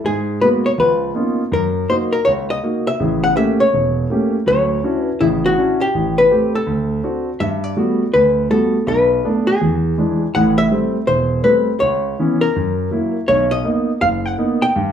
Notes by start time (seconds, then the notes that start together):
0.04 G#2 G#4
0.41 G#3 A#3 B3 F#4 B4
0.66 C#5
0.78 C#2 F3 B4
1.15 A#3 B3 C#4 D#4 F4
1.52 F#2 A#4
1.89 A#3 D#4 F#4 C5
2.12 A#4
2.25 C#2 C#5
2.50 D#5
2.63 A#3 D#4 F#4
2.87 E5
3.00 A1 C#3
3.24 F#5
3.36 A3 A#3 C#4 G4 E5
3.60 C#5
3.73 E1
4.10 A3 A#3 C#4 G4
4.46 D2 F#3 C#5
4.83 C#4 D4 E4 F#4
5.03 B4
5.21 A1 C#3 E4
5.46 F#4
5.58 C#4 D4 E4 F#4
5.81 G4
5.94 A1
6.18 B4
6.31 A3 C4 G4
6.55 A4
6.67 D2
7.04 C4 D4 F#4
7.40 G2 E5
7.64 D5
7.77 G3 A3 B3 F#4
8.14 D2 B4
8.50 G3 A3 B3 F#4 A4
8.87 B1 B4
9.25 A3 B3 D4
9.47 G#4
9.61 E2
9.98 E3 G#3 D4
10.35 A1 A2 F#5
10.58 E5
10.71 G3 A3 C4
11.07 E1 C5
11.44 G3 A3 C4 B4
11.80 C#2 C#5
12.19 E3 B3 C#4
12.41 A#4
12.56 F#2
12.91 F#3 A#3 E4
13.28 B1 C#5
13.51 D#5
13.64 A#3 B3 D#4
14.01 F#1 F5
14.26 F#5
14.38 A#3 B3 D#4
14.62 G5
14.76 G2